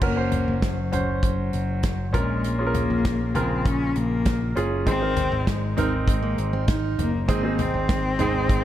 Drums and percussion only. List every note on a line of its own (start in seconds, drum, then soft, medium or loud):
0.02 kick medium
0.02 crash medium
0.32 closed hi-hat medium
0.32 floor tom medium
0.62 kick loud
0.62 snare loud
0.62 closed hi-hat medium
0.93 closed hi-hat medium
0.93 floor tom medium
1.23 kick loud
1.23 closed hi-hat medium
1.53 closed hi-hat medium
1.83 kick loud
1.83 snare medium
1.83 closed hi-hat medium
2.14 kick medium
2.14 closed hi-hat medium
2.14 floor tom medium
2.44 closed hi-hat medium
2.74 closed hi-hat medium
2.74 floor tom medium
3.05 kick loud
3.05 snare medium
3.05 closed hi-hat medium
3.35 closed hi-hat medium
3.35 floor tom medium
3.65 kick loud
3.65 closed hi-hat medium
3.96 closed hi-hat medium
4.26 kick loud
4.26 snare loud
4.26 closed hi-hat medium
4.57 closed hi-hat medium
4.87 kick medium
4.87 closed hi-hat medium
5.17 closed hi-hat medium
5.17 floor tom medium
5.47 kick medium
5.47 snare loud
5.47 closed hi-hat medium
5.78 closed hi-hat medium
5.78 floor tom medium
6.08 kick loud
6.08 closed hi-hat medium
6.38 closed hi-hat medium
6.68 kick loud
6.68 snare loud
6.68 closed hi-hat medium
6.99 closed hi-hat medium
6.99 floor tom medium
7.29 kick loud
7.29 closed hi-hat medium
7.59 closed hi-hat medium
7.59 floor tom medium
7.89 kick loud
7.89 snare loud
7.89 closed hi-hat medium
8.19 closed hi-hat medium
8.19 floor tom medium
8.49 kick loud
8.49 closed hi-hat medium